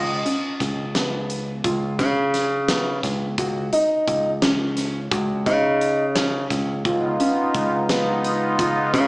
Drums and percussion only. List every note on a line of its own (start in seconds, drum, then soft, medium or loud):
0.26 closed hi-hat medium
0.60 kick medium
0.60 snare soft
0.60 closed hi-hat medium
0.95 snare medium
0.95 closed hi-hat medium
1.30 closed hi-hat medium
1.64 kick loud
1.64 closed hi-hat medium
1.99 kick medium
1.99 snare soft
1.99 closed hi-hat medium
2.34 snare soft
2.34 closed hi-hat medium
2.68 snare loud
2.68 closed hi-hat medium
3.03 kick medium
3.03 snare soft
3.03 closed hi-hat medium
3.38 kick loud
3.38 closed hi-hat medium
3.73 closed hi-hat medium
4.08 kick medium
4.08 closed hi-hat medium
4.42 snare loud
4.42 closed hi-hat medium
4.77 snare soft
4.77 closed hi-hat medium
5.11 kick loud
5.11 closed hi-hat medium
5.46 kick medium
5.46 closed hi-hat medium
5.81 closed hi-hat medium
6.16 snare loud
6.16 closed hi-hat medium
6.50 kick medium
6.50 snare soft
6.50 closed hi-hat medium
6.85 kick loud
6.85 closed hi-hat medium
7.20 closed hi-hat medium
7.54 kick medium
7.54 closed hi-hat medium
7.89 snare loud
7.89 closed hi-hat medium
8.24 closed hi-hat medium
8.59 kick loud
8.59 closed hi-hat medium
8.94 kick medium
8.94 closed hi-hat medium